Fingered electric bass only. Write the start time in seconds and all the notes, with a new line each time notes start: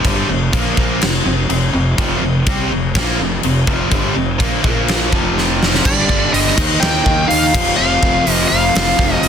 0.05 G1
0.28 F1
0.53 A#1
0.77 A#1
1.02 F1
1.25 F1
1.50 F1
1.74 F1
1.98 F1
2.23 F1
2.47 C2
2.71 F1
2.95 A#1
3.19 F1
3.44 F1
3.67 F1
3.92 G1
4.16 F1
4.40 A#1
4.64 A#1
5.12 F1
5.85 G1
6.10 G1
6.33 G1
6.57 D#2
6.82 D#2
7.06 D#2
7.31 D#2
7.54 F1
7.79 F1
8.03 F1
8.27 F1
8.52 F1
8.76 F1
8.99 F1
9.23 F1